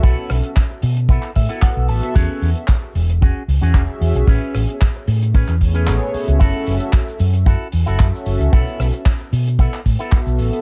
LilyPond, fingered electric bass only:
\new Staff \with { instrumentName = "Fingered electric bass" } { \clef bass \time 4/4 \key b \dorian \tempo 4 = 113 b,,16 r16 b,,16 r8. b,8. r16 a,16 r8 b,,16 a,,16 r16 | e,16 r16 e,16 r8. e,,8. r16 cis,16 e,16 e,,16 r16 e,16 b,,16 | a,,16 r16 a,,16 r8. a,8. e,8. a,,16 r8 cis,16 | fis,,16 r16 fis,,16 r8. fis,8. r16 e,16 fis,,16 fis,16 r16 fis,,16 cis,16 |
b,,16 r16 b,,16 r8. b,8. r16 a,16 r8 b,,16 a,,16 r16 | }